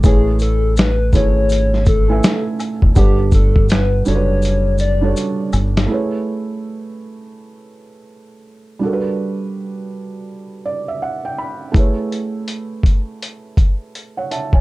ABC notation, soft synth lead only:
X:1
M:4/4
L:1/16
Q:"Swing 16ths" 1/4=82
K:A
V:1 name="Soft synth lead"
G2 A2 B2 c4 A3 z3 | =G2 A2 B2 c4 d2 z4 | z16 | z16 |
z16 |]